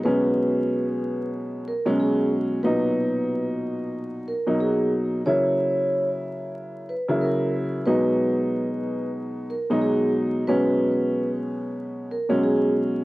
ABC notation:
X:1
M:4/4
L:1/16
Q:"Swing 16ths" 1/4=92
K:C#dor
V:1 name="Vibraphone"
B4- B z4 z A z G2 z2 | B4- B z4 z A z G2 z2 | c4- c z4 z B z A2 z2 | B4- B z4 z A z G2 z2 |
B4- B z4 z A z G2 z2 |]
V:2 name="Upright piano" clef=bass
[B,,F,G,C]8- [B,,F,G,C]2 z [B,,F,G,C]4- [B,,F,G,C] | [A,,B,,F,D]8- [A,,B,,F,D]2 z [B,,F,A,D]4- [B,,F,A,D] | [C,F,A,E]8- [C,F,A,E]2 z [C,F,A,E]4- [C,F,A,E] | [B,,F,G,D]8- [B,,F,G,D]2 z [B,,F,G,D]4- [B,,F,G,D] |
[B,,F,G,C]8- [B,,F,G,C]2 z [B,,F,G,C]4- [B,,F,G,C] |]